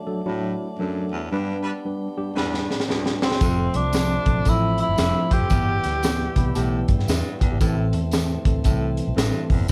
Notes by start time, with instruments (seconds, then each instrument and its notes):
Already playing: tonewheel organ F#3 A3 D4
0.07 tine electric piano F#3 D4 A4
0.26 baritone saxophone A2, tine electric piano F#3 D4 E4
0.79 baritone saxophone F#2, tine electric piano F#3 D4 A4
1.12 baritone saxophone E2
1.31 baritone saxophone G2, tonewheel organ G3 B3, tine electric piano G3 D4 B4
1.63 horn section G3 D4 B4
1.85 tine electric piano G3 D4 B4
2.17 tine electric piano G3 D4 G4
2.35 baritone saxophone E2, horn section G3 D4 B4, tine electric piano G3 D4 B4, snare
2.54 snare
2.71 snare
2.80 snare
2.88 baritone saxophone D2, tine electric piano G3 D4 B4, snare
3.06 snare
3.22 baritone saxophone D2, tenor saxophone C4, glockenspiel C6, snare
3.31 snare
3.40 fingered electric bass F1, baritone saxophone F2, tine electric piano F3 C4 A4, tonewheel organ F3 A3 C4, kick, closed hi-hat, tambourine
3.74 fingered electric bass C2, tenor saxophone D4, glockenspiel D6, closed hi-hat
3.93 tine electric piano F3 C4 A4, snare, closed hi-hat, tambourine
4.25 fingered electric bass B1, tine electric piano F3 C4 A4, kick, closed hi-hat
4.45 fingered electric bass A1, baritone saxophone A2, tine electric piano F3 C4 A4, kick, closed hi-hat, tambourine
4.49 tenor saxophone E4, glockenspiel E6
4.78 tenor saxophone E4, glockenspiel E6, closed hi-hat
4.89 fingered electric bass G1
4.97 fingered electric bass F1, baritone saxophone G2, tine electric piano F3 C4 A4, snare, closed hi-hat, tambourine
5.30 fingered electric bass F1, baritone saxophone F2, tenor saxophone G4, glockenspiel G6, kick, closed hi-hat
5.42 fingered electric bass F#1
5.50 fingered electric bass G1, baritone saxophone E2, tine electric piano E3 B3 G4, tonewheel organ E3 G3 B3, kick, closed hi-hat, tambourine
5.84 fingered electric bass D2, snare, closed hi-hat
6.03 tine electric piano E3 B3 G4, snare, closed hi-hat, tambourine
6.36 fingered electric bass C2, tine electric piano E3 B3 G4 B5, kick, closed hi-hat
6.55 fingered electric bass B1, baritone saxophone A2, tine electric piano E3 B3 G4 A5, closed hi-hat, tambourine
6.88 fingered electric bass G2, tine electric piano G5, kick, closed hi-hat
6.99 snare
7.08 fingered electric bass E2, baritone saxophone G2, tine electric piano E5, snare, closed hi-hat, tambourine
7.40 fingered electric bass G1, baritone saxophone E2, tine electric piano G4 B4 G5, kick, closed hi-hat
7.51 fingered electric bass G#1, tine electric piano E4 G4
7.60 fingered electric bass A1, baritone saxophone A2, tine electric piano E3 C4 A4, tonewheel organ A3 C4, kick, closed hi-hat, tambourine
7.93 fingered electric bass E2, closed hi-hat
8.11 tine electric piano E3 C4 A4, snare, closed hi-hat, tambourine
8.45 fingered electric bass D2, tine electric piano E3 C4 A4, kick, closed hi-hat
8.64 fingered electric bass C2, baritone saxophone A2, tine electric piano E3 C4 A4, kick, closed hi-hat, tambourine
8.97 closed hi-hat
9.07 fingered electric bass B1
9.16 fingered electric bass A1, baritone saxophone G2, tine electric piano E3 C4 A4, snare, closed hi-hat, tambourine
9.49 fingered electric bass F1, baritone saxophone E2, kick, open hi-hat
9.59 fingered electric bass F#1
9.68 baritone saxophone G2, tambourine